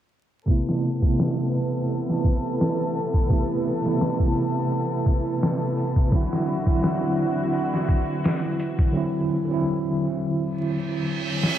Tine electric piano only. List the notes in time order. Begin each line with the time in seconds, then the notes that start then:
0.46 C3 A3 B3
0.51 E4
0.99 C3 A3
1.05 B3 E4
3.29 C3 A3 B3
3.33 E4
3.81 C3 A3
3.87 B3 E4
6.11 D3 F#3 C4
6.15 E4
6.62 D3 F#3
6.69 C4 E4
8.93 D3 F#3 C4
8.97 E4
9.44 D3 F#3
9.51 C4 E4